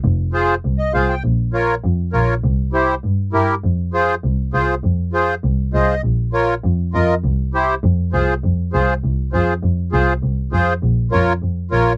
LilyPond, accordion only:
\new Staff \with { instrumentName = "Accordion" } { \time 4/4 \key f \minor \tempo 4 = 200 << { r2 r8 ees''8 f''8 g''8 | r1 | r1 | r1 |
r2. ees''4 | r1 | r1 | r1 |
r1 | r1 | } \\ { r4 <f' aes' c''>8 r4. <f' aes' c''>8 r8 | r4 <f' bes' des''>8 r4. <f' bes' des''>8 r8 | r4 <e' g' c''>8 r4. <e' g' bes'>8 r8 | r4 <f' aes' c''>8 r4. <f' aes' c''>8 r8 |
r4 <f' aes' c''>8 r4. <f' aes' c''>8 r8 | r4 <f' bes' des''>8 r4. <f' bes' ees''>8 r8 | r4 <e' g' c''>8 r4. <f' aes' c''>8 r8 | r4 <f' aes' c''>8 r4. <f' aes' c''>8 r8 |
r4 <f' aes' c''>8 r4. <f' aes' c''>8 r8 | r4 <f' bes' des''>8 r4. <f' bes' des''>8 r8 | } >> }